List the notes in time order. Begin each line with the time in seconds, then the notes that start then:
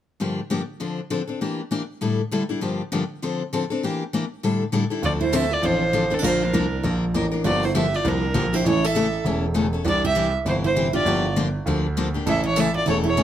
0.20 G2 D3 F3 A#3 D4 G4
0.50 G2 D3 F3 A#3 D4 G4
0.80 D3 F3 C4 D4 A4
1.10 D3 F3 C4 D4 A4
1.27 C4 D4 A4
1.41 E3 A#3 D4 G4
1.71 E3 A#3 D4 G4
2.01 A2 D3 G3 D4 E4 A4
2.31 A2 D3 G3 D4 E4 A4
2.49 G3 D4 E4 A4
2.61 G2 D3 F3 A#3 D4 G4
2.92 G2 D3 F3 A#3 D4 G4
3.22 D3 F3 C4 D4 A4
3.53 D3 F3 C4 D4 A4
3.70 C4 D4 A4
3.83 E3 A#3 D4 G4
4.13 E3 A#3 D4 G4
4.43 A2 D3 G3 D4 E4 A4
4.72 A2 D3 G3 D4 E4 A4
4.90 G3 D4 E4 A4
5.02 D2 D3 F3 C4 D4 F4 A4 D5
5.21 E4 C5
5.32 D3 F3 C4 D4 A4 E5
5.51 F4 D5
5.62 A1 D3 F3 C4 D4 F4 A4 C5
5.93 D3 F3 C4 D4 A4
6.10 C4 D4 A4
6.19 A#1 D4
6.23 D3 F3 A#3 D4 F4 A#4 C5
6.43 D4 A#4
6.53 C2 D3 F3 A#3 D4 A#4
6.83 A#1 D3 F3 A#3 D4 A#4
7.14 A1 D3 F3 A#3 D4 A#4
7.32 A#3 D4 A#4
7.44 G1 D3 F3 A#3 D4 F4 G4 D5
7.63 E4 C5
7.75 D3 F3 A#3 D4 G4 E5
7.94 F4 D5
8.04 C2 D3 F3 A#3 D4 G4 A#4
8.34 A#1 D3 F3 A#3 D4 G4
8.53 A#3 D4 E4 G4 C5
8.64 A1 C#3 E3 A3 C#4 E4 A4 C#5
8.84 A4 E5
8.95 C#3 E3 A3 C#4 A4
9.25 E1 C#3 E3 A3 C#4 A4
9.54 C#3 E3 A3 C#4 A4
9.73 A3 C#4 A4
9.84 C2 C3 E3 D4 G4
9.89 D5
10.05 G4 E5
10.15 C3 E3 D4 G4
10.45 G1 C3 E3 D4 E4 G4 C5
10.64 E4 C5
10.76 C3 E3 D4 G4
10.93 E3 D4 F4 G4 D5
11.05 G1 D3 F3 A#3 D4 G4
11.36 D3 F3 A#3 D4 G4
11.66 D2 D3 F3 A#3 D4 G4
11.97 D3 F3 A#3 D4 G4
12.14 A#3 D4 G4
12.26 A1 C#3 E3 A3 C#4 A4 E5
12.44 E4
12.48 C#5
12.56 C#3 E3 A3 C#4 A4 E5
12.74 F4 D5
12.86 E1 C#3 E3 A3 C#4 E4 A4
12.90 C#5
13.04 E4 C#5
13.17 C#3 E3 A3 C#4 A4